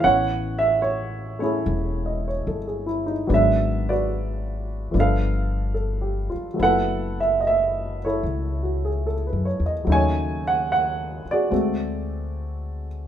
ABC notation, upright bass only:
X:1
M:4/4
L:1/8
Q:"Swing" 1/4=73
K:F#dor
V:1 name="Upright bass" clef=bass
A,,,4 E,,,2 =G,,,2 | G,,,4 =G,,,3 z | F,,,4 C,,2- (3C,, F,, E,, | D,,3 z =D,,4 |]